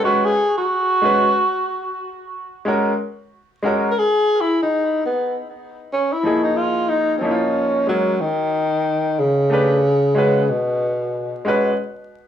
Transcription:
0.03 G#3 C#4 F#4 B4
0.25 G#4
0.58 F#4
1.01 G#3 C#4 F#4 B4
2.65 G#3 C#4 F#4 A#4
3.62 G#3 C#4 F#4 A#4
3.92 A#4
3.98 G#4
4.41 E4
4.63 D#4
5.06 B3
5.93 C#4
6.13 E4
6.23 F3 A#3 D#4 G#4
6.44 D#4
6.57 F4
6.89 D#4
7.18 F3 A#3 C4
7.22 C#4 D#4 E4
7.31 F4
7.87 F#3 G#3 C#4 F#4 A#4
8.21 D#3
9.19 C#3
9.50 A3 D4 G4 B4
10.15 G#3 C#4 F#4 B4
10.50 B2
11.45 G#3 C#4 F#4 B4

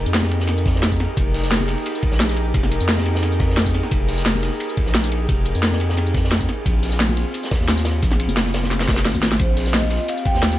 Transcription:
Already playing: D#4 G4 G#4 A#4
0.06 F2, tambourine
0.14 snare, closed hi-hat, ride, tambourine
0.23 snare, high conga
0.31 closed hi-hat, ride
0.40 snare
0.47 snare, closed hi-hat, ride, tambourine
0.58 tambourine
0.66 kick, snare, closed hi-hat, ride
0.75 snare
0.82 snare, closed hi-hat, ride, tambourine
0.92 kick, tambourine
1.00 snare, closed hi-hat, ride
1.17 F1, kick, closed hi-hat, ride, tambourine
1.34 snare, closed hi-hat, open hi-hat, tambourine
1.43 snare, tambourine
1.51 snare, closed hi-hat, ride, tambourine
1.61 high conga
1.68 snare, closed hi-hat, ride
1.78 ride
1.86 closed hi-hat, ride, tambourine
1.95 tambourine
2.02 kick, closed hi-hat, ride
2.12 A#1, snare
2.19 snare, closed hi-hat, ride, tambourine
2.29 snare, tambourine
2.36 closed hi-hat, ride
2.54 F1, kick, closed hi-hat, ride, tambourine
2.63 snare, closed hi-hat
2.71 closed hi-hat, ride, tambourine
2.80 F2, tambourine
2.88 snare, closed hi-hat, ride, tambourine
2.98 snare, high conga
3.06 closed hi-hat, ride
3.15 snare
3.23 snare, closed hi-hat, ride, tambourine
3.32 tambourine
3.40 kick, snare, closed hi-hat, ride
3.50 snare
3.57 snare, closed hi-hat, ride, tambourine
3.66 kick, tambourine
3.74 snare, closed hi-hat, ride
3.83 snare
3.91 F1, kick, closed hi-hat, ride, tambourine
4.09 snare, closed hi-hat, open hi-hat, tambourine
4.18 snare, tambourine
4.25 snare, closed hi-hat, ride, tambourine
4.35 high conga
4.43 snare, closed hi-hat, ride
4.52 ride
4.60 closed hi-hat, ride, tambourine
4.69 tambourine
4.77 kick, closed hi-hat, ride
4.86 A#1, snare
4.95 snare, closed hi-hat, ride, tambourine
5.04 snare, tambourine
5.12 closed hi-hat, ride
5.29 F1, kick, closed hi-hat, ride, tambourine
5.45 closed hi-hat, ride, tambourine
5.55 F2, tambourine
5.63 snare, closed hi-hat, ride, tambourine
5.72 snare, high conga
5.80 closed hi-hat, ride
5.89 snare
5.97 snare, closed hi-hat, ride, tambourine
6.06 tambourine
6.14 kick, snare, closed hi-hat, ride
6.24 snare
6.31 snare, closed hi-hat, ride, tambourine
6.41 kick, tambourine
6.49 C4 F4, snare, closed hi-hat, ride
6.66 A#1, kick, closed hi-hat, ride, tambourine
6.83 snare, closed hi-hat, open hi-hat, tambourine
6.92 snare, tambourine
6.99 snare, closed hi-hat, ride, tambourine
7.09 high conga
7.17 closed hi-hat, ride
7.34 closed hi-hat, ride, tambourine
7.43 snare, tambourine
7.51 kick, snare, closed hi-hat, ride
7.60 D#2, snare
7.68 snare, closed hi-hat, ride, tambourine
7.77 snare, tambourine
7.85 snare, closed hi-hat, ride
8.03 A#1, kick, snare, closed hi-hat, ride, tambourine
8.12 snare, closed hi-hat, ride
8.20 closed hi-hat, ride, tambourine
8.29 F1, tambourine, high conga
8.37 snare, closed hi-hat, ride, tambourine
8.46 snare, closed hi-hat, high conga
8.54 snare, closed hi-hat, ride
8.63 snare, closed hi-hat, high conga
8.71 snare, closed hi-hat, ride, tambourine
8.80 snare, ride, tambourine
8.88 kick, snare, closed hi-hat, ride
8.92 snare, ride
8.96 snare, ride
9.05 G#1, snare, closed hi-hat, ride, tambourine
9.15 kick, tambourine, high conga
9.23 snare, closed hi-hat, ride, tambourine
9.32 snare
9.39 A#1 C5, kick, closed hi-hat, ride, tambourine
9.56 snare, closed hi-hat, open hi-hat, tambourine
9.66 snare, tambourine
9.74 D#5, snare, closed hi-hat, ride, tambourine
9.83 high conga
9.90 G4, snare, closed hi-hat, ride
10.00 ride
10.08 F5, closed hi-hat, ride, tambourine
10.17 tambourine
10.25 G5, kick, closed hi-hat, ride
10.35 D#2, snare
10.42 snare, closed hi-hat, ride, tambourine
10.51 snare, tambourine

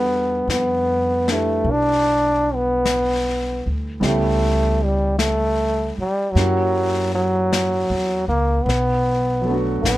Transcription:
Already playing: E2 G3 B3 D4 F#4 A4 D5
0.48 F2 B3, brush sweep, snare, hi-hat pedal
1.28 D4 E4 G4, snare
1.32 A3 B4
1.65 B1, brush sweep
1.71 D4
2.55 B3
2.85 brush sweep, snare, hi-hat pedal
3.66 D2
4.00 C#2 G3 G#3 B3 C#4 E4, brush sweep, snare
4.05 A3 G4
4.85 G3
5.19 A3, brush sweep, snare, hi-hat pedal
5.98 G3, muted upright bass stroke
6.32 F#2 F#3
6.36 A#3 C#4 E4 F#4 G4, brush sweep, snare
7.14 F#3
7.53 brush sweep, snare, hi-hat pedal
7.90 E2
8.28 C#2 A#3
8.64 B1 B3
8.69 brush sweep, snare
9.41 F#3 A3
9.47 B3 D4
9.53 F#4
9.82 A1 B3, brush sweep, snare, hi-hat pedal

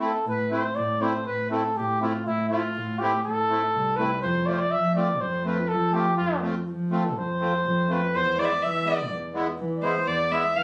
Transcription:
0.00 A3 C4 E4 A4
0.26 A2 B4
0.50 A3 C4 E4 C5
0.76 A2 D5
1.00 A3 C4 E4 C5
1.26 A2 B4
1.49 A3 C4 E4 A4
1.77 A2 G4
2.00 A3 C4 E4 F4
2.26 A2 E4
2.49 A3 C4 E4 F4
2.75 A2
2.99 A3 C4 E4 G4
3.23 A2 A4
3.49 A3 C4 E4
3.74 C2
3.96 A3 C4 E4 B4
4.22 F2 C5
4.46 A3 C4 F4 D5
4.53 C5
4.59 D5
4.71 F3 E5
4.95 A3 C4 F4 D5
5.21 F2 C5
5.44 A3 C4 F4 B4
5.68 F3 A4
5.93 A3 C4 F4 G4
6.17 F2 F4
6.41 A3 C4 F4
6.69 F3
6.90 A3 C4 F4 A4
7.17 F2 C5
7.40 A3 C4 F4
7.65 F2
7.88 A3 C4 F4
7.92 B4
8.15 E2 C5
8.37 G#3 B3 E4 D5
8.45 E5
8.50 D5
8.62 E3 E5
8.85 G#3 B3 E4 D5
9.11 E2
9.34 G#3 B3 E4
9.58 E3
9.77 D5
9.82 G#3 B3 E4 C5
10.07 E2 D5
10.30 G#3 B3 E4 E5
10.55 E3 F5

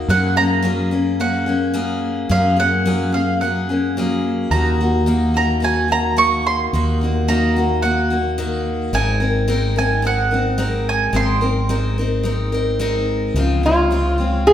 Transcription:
Already playing: F#4
0.08 F#2 F#3 A#3 C#4 G#4 F#5
0.36 A#3 C#4 G#4 A#5
0.62 F#3 A#3 C#4 G#4
0.91 A#3 C#4 G#4
1.20 F#3 A#3 C#4 G#4 F#5
1.46 A#3 C#4 G#4
1.74 F#3 A#3 C#4 G#4
2.29 F#2 F#3 A#3 C#4 G#4 F5
2.56 A#3 C#4 G#4 F#5
2.86 F#3 A#3 C#4 G#4
3.12 A#3 C#4 G#4 F5
3.41 F#3 A#3 C#4 G#4 F#5
3.69 A#3 C#4 G#4
3.97 F#3 A#3 C#4 G#4
4.51 D#2 D#3 A#3 D#4 F#4 A#5
4.80 A#3 D#4 F#4
5.06 D#3 A#3 D#4 F#4
5.34 A#3 D#4 F#4 A#5
5.60 D#3 A#3 D#4 F#4
5.64 G#5
5.88 A#3 D#4 F#4 A#5
6.17 D#3 A#3 D#4 F#4 C#6
6.47 C6
6.73 D#2 D#3 A#3 D#4 F#4
7.01 A#3 D#4 F#4
7.28 D#3 A#3 D#4 F#4 A#5
7.56 A#3 D#4 F#4
7.82 D#3 A#3 D#4 F#4 F#5
8.10 A#3 D#4 F#4
8.38 D#3 A#3 D#4 F#4
8.93 G#1 G#3 C4 D#4 A#4 G#5
9.20 C4 D#4 A#4
9.48 G#3 C4 D#4 A#4
9.76 C4 D#4 A#4 G#5
10.02 G#3 C4 D#4 A#4
10.07 F#5
10.31 C4 D#4 A#4
10.58 G#3 C4 D#4 A#4
10.89 G#5
11.13 G#1 G#3 C4 D#4 A#4 C6
11.41 C4 D#4 A#4
11.69 G#3 C4 D#4 A#4
11.98 C4 D#4 A#4
12.23 G#3 C4 D#4 A#4
12.52 C4 D#4 A#4
12.79 G#3 C4 D#4 A#4
13.34 C#2 C#3 F3 G#3 C4 F4
13.63 G#3 C4 F4 C#5
13.91 F3 G#3 C4 F4
14.18 G#3 C4 F4
14.47 G#4 F5

